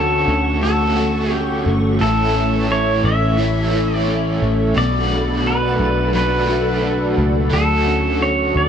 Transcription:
Already playing: D2 D3 A3 C#4 F#4 A4 F#5 C#6
0.28 D2 C#4
0.61 D3 A3 C#4 A4
0.66 F#4
0.96 C#4 F#4
1.00 A3
1.32 C#4 G4
1.66 G1 A3
1.99 A1 A2 E3 E4 A4 C#5 E5
2.03 A3 C#4 E4
2.35 C#4
2.69 E4 C#5
3.04 A1 C#4 E5
3.37 E3 A3 C#4
3.42 E4
3.71 C#4 E4
3.76 A3
3.95 D5
4.08 C#4
4.42 A1 A3
4.74 B1 B2 F#3 F#4 D5 F#5 B5
4.78 A3 D4 F#4
4.90 A4
4.94 D5
5.00 E5
5.11 D4
5.46 F#4 B4
5.80 B1 D4
6.13 F#3 A3 D4 B4
6.18 F#4
6.47 D4 F#4
6.52 A3
6.83 D4
7.18 C#2 A3
7.50 D2 D3 A3 F#4 A4 C#6
7.57 F#4
7.86 C#4
8.20 F#4 C#5
8.56 D2 D5

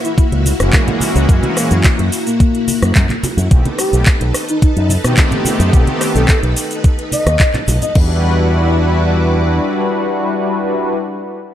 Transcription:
Already playing: A#3 E4 F#4
0.04 E4, closed hi-hat, shaker
0.18 E4, muted fingered electric bass stroke, kick, closed hi-hat, shaker
0.32 C#2, closed hi-hat
0.46 open hi-hat, high conga, shaker
0.59 F#1 E3 G#3 A#3 C#4 F#4, cross-stick, closed hi-hat, shaker
0.73 A#3, kick, clap, closed hi-hat, shaker
0.88 A#3, closed hi-hat, high conga, low conga
1.00 open hi-hat, high conga, shaker
1.15 C#2, closed hi-hat, shaker
1.29 F#2 E3 G#3 A#3 C#4 F#4, kick, closed hi-hat, shaker
1.43 closed hi-hat, high conga
1.57 A#3, cross-stick, open hi-hat, shaker
1.71 F#2 E3 G#3 A#3 C#4 F#4, closed hi-hat, shaker
1.84 kick, clap, closed hi-hat, shaker
1.99 F#2, closed hi-hat
2.12 open hi-hat, shaker
2.26 A#3, closed hi-hat, shaker
2.40 kick, closed hi-hat, shaker
2.55 closed hi-hat
2.68 open hi-hat, high conga, shaker
2.82 F#2, cross-stick, closed hi-hat, shaker
2.95 F#2, kick, clap, closed hi-hat, shaker
3.09 clap, closed hi-hat, high conga, low conga
3.23 muted fingered electric bass stroke, open hi-hat, high conga, shaker
3.37 F#2, closed hi-hat, low conga, shaker
3.50 B1 D#3 A3 B3 C4 D#4 G4 A4 B4, kick, closed hi-hat, shaker
3.65 closed hi-hat, high conga
3.79 G4, cross-stick, open hi-hat, shaker
3.93 B1 D#3 A3 B3 C4 G4, closed hi-hat, shaker
4.06 kick, clap, closed hi-hat, shaker
4.21 B1, closed hi-hat
4.34 cross-stick, open hi-hat, shaker
4.49 D#4, closed hi-hat, shaker
4.62 D#4, muted fingered electric bass stroke, kick, closed hi-hat, shaker
4.77 F#2 D#4, closed hi-hat
4.89 open hi-hat, high conga, shaker
5.03 B2 D#3 A3 B3 C4 G4, cross-stick, closed hi-hat, shaker
5.17 kick, clap, closed hi-hat, shaker
5.31 closed hi-hat, high conga, low conga
5.45 open hi-hat, high conga, shaker
5.60 F#2, closed hi-hat, shaker
5.73 B1 D#3 A3 B3 C4 G4, kick, closed hi-hat, shaker
5.87 closed hi-hat, high conga
6.01 cross-stick, open hi-hat, shaker
6.15 B1 D#3 A3 B3 C4 G4 A4, closed hi-hat, shaker
6.29 A4, kick, clap, closed hi-hat, shaker
6.43 B1, closed hi-hat
6.56 open hi-hat, shaker
6.71 closed hi-hat, shaker
6.84 kick, closed hi-hat, shaker
6.99 closed hi-hat
7.12 D#5, open hi-hat, high conga, shaker
7.26 D#2, cross-stick, closed hi-hat, shaker
7.40 kick, clap, closed hi-hat, shaker
7.54 clap, closed hi-hat, high conga, low conga
7.68 B1, open hi-hat, high conga, shaker
7.82 D#5, closed hi-hat, low conga, shaker
7.94 E2 G3 D4 E4 F#4 B4 D5 F#5, kick, crash

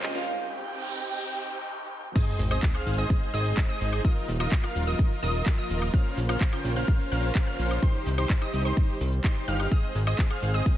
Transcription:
Already playing: A#2 C#3 F3 A#3 C4 C#4 F4 A#4 C5 G5, riser
0.03 D#5, clap, open hi-hat
0.15 C#4 F4 A#4 C5 F5, closed hi-hat
0.26 C3 C4 D#4 G4 G5, noise sweep
2.15 G#3 C4 D#4 G#4 C5 D#5 D#6, kick, closed hi-hat, crash, sub drop, shaker
2.27 closed hi-hat, shaker
2.39 G#1, open hi-hat, shaker
2.51 G#4 C5 D#5 D#6, closed hi-hat, high woodblock, shaker
2.63 kick, clap, closed hi-hat, shaker
2.75 G#4 C5 F5 F6, closed hi-hat, high woodblock, shaker
2.86 G#1, open hi-hat, shaker
2.98 G#4 C5 D#5 D#6, closed hi-hat, shaker
3.10 kick, closed hi-hat, shaker
3.22 closed hi-hat, shaker
3.34 G#1 G#4 C5 D#5 D#6, open hi-hat, shaker
3.46 closed hi-hat, shaker
3.57 kick, clap, closed hi-hat, shaker
3.69 G#4 C5 D#5 D#6, closed hi-hat, shaker
3.81 G#1, open hi-hat, shaker
3.93 closed hi-hat, high woodblock, shaker
4.04 F3 A#3 F4 A#4 D#5 D#6, kick, closed hi-hat, shaker
4.16 closed hi-hat, shaker
4.28 D#1, open hi-hat, shaker
4.40 F4 A#4 D#5 D#6, closed hi-hat, high woodblock, shaker
4.52 kick, clap, closed hi-hat, shaker
4.63 F4 A#4 F5 F6, closed hi-hat, high woodblock, shaker
4.75 D#1, open hi-hat, shaker
4.87 F4 A#4 D#5 D#6, closed hi-hat, shaker
4.99 kick, closed hi-hat, shaker
5.11 closed hi-hat, shaker
5.23 D#1 F4 A#4 D#5 D#6, open hi-hat, shaker
5.35 closed hi-hat, shaker
5.46 kick, clap, open hi-hat, shaker
5.58 F4 A#4 D#5 D#6, closed hi-hat, shaker
5.70 D#1, open hi-hat, shaker
5.82 closed hi-hat, high woodblock, shaker
5.93 C#3 C#4 F4 A#4 C5 F5 F6, kick, closed hi-hat, shaker
6.06 closed hi-hat, shaker
6.17 A#1, open hi-hat, shaker
6.29 C#4 F4 A#4 C5 F5 F6, closed hi-hat, high woodblock, shaker
6.41 kick, clap, closed hi-hat, shaker
6.53 C#4 F4 A#4 C5 G5 G6, closed hi-hat, high woodblock, shaker
6.64 A#1, open hi-hat, shaker
6.76 C#4 F4 A#4 C5 F5 F6, closed hi-hat, shaker
6.88 kick, closed hi-hat, shaker
7.00 closed hi-hat, shaker
7.12 A#1 C#4 F4 A#4 C5 F5 F6, open hi-hat, shaker
7.24 closed hi-hat, shaker
7.35 kick, clap, closed hi-hat, shaker
7.47 C#4 F4 A#4 C5 F5 F6, closed hi-hat, shaker
7.59 A#1, open hi-hat, shaker
7.71 closed hi-hat, high woodblock, shaker
7.82 D#3 G3 D#4 G4 C5 C6, kick, closed hi-hat, shaker
7.94 closed hi-hat, shaker
8.06 C2, open hi-hat, shaker
8.18 D#4 G4 C5 C6, closed hi-hat, high woodblock, shaker
8.30 kick, clap, closed hi-hat, shaker
8.41 D#4 G4 D#5 D#6, closed hi-hat, high woodblock, shaker
8.53 C2, open hi-hat, shaker
8.65 D#4 G4 C5 C6, closed hi-hat, shaker
8.77 kick, closed hi-hat, shaker
8.89 closed hi-hat, shaker
9.01 C2, open hi-hat, shaker
9.13 closed hi-hat, shaker
9.24 D#4 G4 C5 C6, kick, clap, open hi-hat, shaker
9.36 closed hi-hat, shaker
9.48 G1 D#4 G4 F5 F6, open hi-hat, shaker
9.60 D#4 G4 F5 F6, closed hi-hat, high woodblock, shaker
9.71 D#3 G#3 C4 G#4 C5 D#6, kick, closed hi-hat, shaker
9.83 closed hi-hat, shaker
9.95 G#1, open hi-hat, shaker
10.07 G#4 C5 D#5 D#6, closed hi-hat, high woodblock, shaker
10.19 kick, clap, closed hi-hat, shaker
10.30 G#4 C5 F5 F6, closed hi-hat, high woodblock, shaker
10.42 G#1, open hi-hat, shaker
10.54 G#4 C5 D#5 D#6, closed hi-hat, shaker
10.66 kick, closed hi-hat, shaker

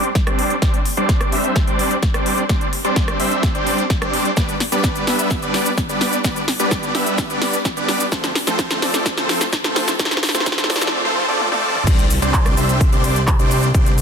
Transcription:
0.03 closed hi-hat
0.15 kick, snare, closed hi-hat
0.27 G3 C4 D4 C5 D5, cross-stick, closed hi-hat
0.39 open hi-hat
0.50 closed hi-hat
0.62 G3 C4 D4 C5 D5, kick, snare, closed hi-hat
0.74 closed hi-hat
0.85 open hi-hat
0.97 G3 C4 D4 C5 D5, closed hi-hat
1.09 kick, snare, closed hi-hat
1.21 cross-stick, closed hi-hat
1.32 G3 C4 D4 C5 E5, open hi-hat
1.44 closed hi-hat
1.56 kick, snare, closed hi-hat
1.67 G3 C4 D4 C5 D5, closed hi-hat
1.79 open hi-hat
1.91 closed hi-hat
2.03 kick, snare, closed hi-hat
2.14 G3 C4 D4 C5 D5, cross-stick, closed hi-hat
2.26 open hi-hat
2.38 closed hi-hat
2.49 G3 C4 D4 C5 D5, kick, snare, closed hi-hat
2.61 closed hi-hat
2.73 open hi-hat
2.85 G3 C4 D4 C5 D5, closed hi-hat
2.96 kick, snare, closed hi-hat
3.08 cross-stick, closed hi-hat
3.20 G3 C4 D4 C5 E5, open hi-hat
3.31 closed hi-hat
3.43 kick, snare, closed hi-hat
3.55 G3 C4 D4 C5 D5, closed hi-hat
3.67 open hi-hat
3.78 closed hi-hat
3.90 kick, snare, closed hi-hat
4.02 G3 C4 D4 C5 D5, cross-stick, closed hi-hat
4.13 open hi-hat
4.25 closed hi-hat
4.37 G3 B3 D4 B4 D5, kick, snare, closed hi-hat, cabasa
4.49 closed hi-hat, cabasa
4.60 snare, open hi-hat
4.72 G3 B3 D4 B4 D5, closed hi-hat, cabasa
4.84 kick, snare, closed hi-hat, cabasa
4.95 closed hi-hat, cabasa
5.07 G3 B3 D4 B4 E5, snare, open hi-hat
5.19 closed hi-hat, cabasa
5.31 kick, snare, closed hi-hat, cabasa
5.42 G3 B3 D4 B4 D5, closed hi-hat, cabasa
5.54 snare, open hi-hat
5.66 closed hi-hat, cabasa
5.78 kick, snare, closed hi-hat, cabasa
5.89 G3 B3 D4 B4 D5, closed hi-hat, cabasa
6.01 snare, open hi-hat
6.13 closed hi-hat, cabasa
6.24 G3 B3 D4 B4 D5, kick, snare, closed hi-hat, cabasa
6.36 closed hi-hat, cabasa
6.48 snare, open hi-hat
6.60 G3 B3 D4 B4 D5, closed hi-hat, cabasa
6.71 kick, snare, closed hi-hat, cabasa
6.83 closed hi-hat, cabasa
6.95 G3 B3 D4 B4 E5, snare, open hi-hat
7.06 closed hi-hat, cabasa
7.18 kick, snare, closed hi-hat, cabasa
7.30 G3 B3 D4 B4 D5, closed hi-hat, cabasa
7.42 snare, open hi-hat
7.53 closed hi-hat, cabasa
7.65 kick, snare, closed hi-hat, cabasa
7.77 G3 B3 D4 B4 D5, closed hi-hat, cabasa
7.89 snare, open hi-hat
8.00 closed hi-hat, cabasa
8.12 F3 A3 C4 A4 C5, kick, snare, closed hi-hat, cabasa
8.24 snare, closed hi-hat, cabasa
8.35 snare, open hi-hat
8.47 F3 A3 C4 A4 C5, snare, closed hi-hat, cabasa
8.59 kick, snare, closed hi-hat, cabasa
8.71 snare, closed hi-hat, cabasa
8.82 F3 A3 C4 A4 D5, snare, open hi-hat
8.94 snare, closed hi-hat, cabasa
9.06 kick, snare, closed hi-hat, cabasa
9.17 F3 A3 C4 A4 C5, snare, closed hi-hat, cabasa
9.29 snare, open hi-hat
9.41 snare, closed hi-hat, cabasa
9.53 kick, snare, closed hi-hat, cabasa
9.64 F3 A3 C4 A4 C5, snare, closed hi-hat, cabasa
9.76 snare, open hi-hat
9.88 snare, closed hi-hat, cabasa
9.99 F3 A3 C4 A4 C5, kick, snare, closed hi-hat, cabasa
10.05 snare
10.11 snare, closed hi-hat, cabasa
10.17 snare
10.23 snare, open hi-hat
10.29 snare
10.35 F3 A3 C4 A4 C5, snare, cabasa
10.40 snare
10.46 kick, snare, closed hi-hat, cabasa
10.52 snare
10.58 snare, closed hi-hat, cabasa
10.64 snare
10.70 F3 A3 C4 A4 D5, snare, open hi-hat
10.76 snare
10.82 snare, closed hi-hat, cabasa
10.87 snare
11.05 F3 A3 C4 A4 C5
11.28 F3 A3 C4 A4 D5
11.40 high tom
11.52 F3 A3 C4 A4 D5, high tom
11.75 mid tom
11.87 C2 G3 C4 D4 C5 D5, kick, closed hi-hat, crash, cabasa
11.99 closed hi-hat, cabasa
12.10 open hi-hat, cabasa
12.22 C2 G3 C4 D4 C5 D5, closed hi-hat, cabasa
12.34 kick, clap, closed hi-hat, cabasa
12.46 cross-stick, closed hi-hat, cabasa
12.57 C2 G3 C4 D4 C5 E5, open hi-hat, cabasa
12.69 closed hi-hat, cabasa
12.81 kick, closed hi-hat, cabasa
12.92 C2 G3 C4 D4 C5 D5, closed hi-hat
13.04 open hi-hat, cabasa
13.16 closed hi-hat, cabasa
13.27 kick, clap, closed hi-hat, cabasa
13.39 C2 G3 C4 D4 C5 D5, closed hi-hat, cabasa
13.51 open hi-hat, cabasa
13.63 closed hi-hat, cabasa
13.74 C2 G3 C4 D4 C5 D5, kick, closed hi-hat, cabasa
13.86 closed hi-hat, cabasa
13.98 open hi-hat, cabasa

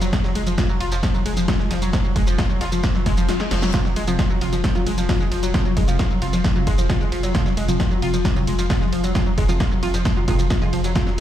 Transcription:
Already playing: F3 F4
0.02 F1 F#3, snare, closed hi-hat, shaker
0.13 F3, kick, snare, closed hi-hat, ride, shaker
0.24 F#3, snare, shaker
0.35 F1 G#3, closed hi-hat, open hi-hat, ride
0.47 F1 F3, closed hi-hat, shaker
0.58 F4, kick, snare, closed hi-hat, ride, shaker
0.69 F#3, shaker
0.81 F1 F4, closed hi-hat, open hi-hat, ride
0.92 F1 F3, snare, closed hi-hat, shaker
1.03 F3, kick, snare, closed hi-hat, ride, shaker
1.14 F#3, closed hi-hat, shaker
1.26 F1 G#3, closed hi-hat, open hi-hat, ride
1.37 F1 F3, snare, closed hi-hat, shaker
1.48 F4, kick, snare, closed hi-hat, open hi-hat, ride, shaker
1.59 G#3, snare, shaker
1.71 F1 F3, snare, closed hi-hat, open hi-hat, ride
1.82 F1 F#3, closed hi-hat, shaker
1.93 F3, kick, snare, closed hi-hat, ride, shaker
2.05 F#3, shaker
2.16 F1 G#3, kick, snare, closed hi-hat, open hi-hat, ride
2.27 F1 F3, closed hi-hat, shaker
2.38 F4, kick, snare, closed hi-hat, ride, shaker
2.50 F#3, shaker
2.61 F1 F4, snare, closed hi-hat, open hi-hat, ride
2.72 F1 F3, closed hi-hat, shaker
2.83 F3, kick, snare, closed hi-hat, ride, reverse cymbal, shaker
2.95 F#3, snare, shaker
3.06 F1 G#3, kick, snare, closed hi-hat, open hi-hat, ride
3.17 F1 F3, closed hi-hat, shaker
3.29 F4, snare, closed hi-hat, ride, shaker
3.40 G#3, snare, shaker
3.51 F1 F3, snare, closed hi-hat, open hi-hat, ride
3.62 F1 F#3, snare, closed hi-hat, shaker
3.74 C3 F3 F4, kick, snare, closed hi-hat, ride, shaker
3.85 F#3, snare, shaker
3.96 F1 G#3, closed hi-hat, open hi-hat, ride
4.08 F1 C3 F3 F4, closed hi-hat, shaker
4.19 F4, kick, snare, closed hi-hat, ride, shaker
4.30 F#3, shaker
4.41 F1 C3 F3 F4, closed hi-hat, open hi-hat, ride
4.53 F1 F3, snare, closed hi-hat, shaker
4.64 F3, kick, snare, closed hi-hat, ride, shaker
4.75 C3 F3 F#3 F4, closed hi-hat, shaker
4.86 F1 G#3, closed hi-hat, open hi-hat, ride
4.98 F1 F3, snare, closed hi-hat, shaker
5.09 C3 F3 F4, kick, snare, closed hi-hat, open hi-hat, ride, shaker
5.20 G#3, snare, shaker
5.32 F1 F3, closed hi-hat, open hi-hat, ride
5.43 F1 F#3, closed hi-hat, shaker
5.54 C3 F3 F4, kick, snare, closed hi-hat, ride, shaker
5.65 F#3, shaker
5.77 F1 G#3, kick, snare, closed hi-hat, open hi-hat, ride
5.88 F1 C3 F3 F4, closed hi-hat, shaker
5.99 F4, kick, snare, closed hi-hat, ride, shaker
6.11 F#3, shaker
6.22 F1 C3 F3 F4, closed hi-hat, open hi-hat, ride
6.33 F1 F3, snare, closed hi-hat, shaker
6.44 F3, kick, snare, closed hi-hat, ride, shaker
6.56 C3 F3 F#3 F4, shaker
6.67 F1 G#3, kick, closed hi-hat, open hi-hat, ride
6.78 F1 F3, closed hi-hat, shaker
6.90 C3 F3 F4, kick, snare, closed hi-hat, ride, shaker
7.01 G#3, snare, shaker
7.12 F1 F3, closed hi-hat, open hi-hat, ride
7.23 F1 F#3, snare, closed hi-hat, shaker
7.35 C3 F3 F4, kick, snare, closed hi-hat, ride, shaker
7.46 F#3, snare, shaker
7.57 F1 G#3, closed hi-hat, open hi-hat, ride
7.68 F1 C3 F3 F4, closed hi-hat, shaker
7.80 F4, kick, snare, closed hi-hat, ride, shaker
7.91 F#3, shaker
8.02 F1 C3 F3 F4, closed hi-hat, open hi-hat, ride
8.14 F1 F3, snare, closed hi-hat, shaker
8.25 F3, kick, snare, closed hi-hat, ride, shaker
8.36 C3 F3 F#3 F4, closed hi-hat, shaker
8.47 F1 G#3, closed hi-hat, open hi-hat, ride
8.59 F1 F3, snare, closed hi-hat, shaker
8.70 C3 F3 F4, kick, snare, closed hi-hat, open hi-hat, ride, shaker
8.81 G#3, snare, shaker
8.93 F1 F3, closed hi-hat, open hi-hat, ride
9.04 F1 F#3, closed hi-hat, shaker
9.15 C3 F3 F4, kick, snare, closed hi-hat, ride, shaker
9.26 F#3, shaker
9.38 F1 G#3, kick, snare, closed hi-hat, open hi-hat, ride
9.49 F1 C3 F3 F4, closed hi-hat, shaker
9.60 F4, kick, snare, closed hi-hat, ride, shaker
9.71 F#3, shaker
9.83 F1 C3 F3 F4, closed hi-hat, open hi-hat, ride
9.94 F1 F3, snare, closed hi-hat, shaker
10.05 F3, kick, snare, closed hi-hat, ride, shaker
10.17 C3 F3 F#3 F4, shaker
10.28 F1 C3 F3 G#3 F4, kick, closed hi-hat, open hi-hat, ride
10.39 F1 F3, closed hi-hat, shaker
10.50 F4, kick, snare, closed hi-hat, ride, shaker
10.62 C3 F3 G#3 F4, snare, shaker
10.73 F1 F3, closed hi-hat, open hi-hat, ride
10.84 F1 F#3, snare, closed hi-hat, shaker
10.96 C3 F3 F4, kick, snare, closed hi-hat, ride, shaker
11.07 F#3, snare, shaker

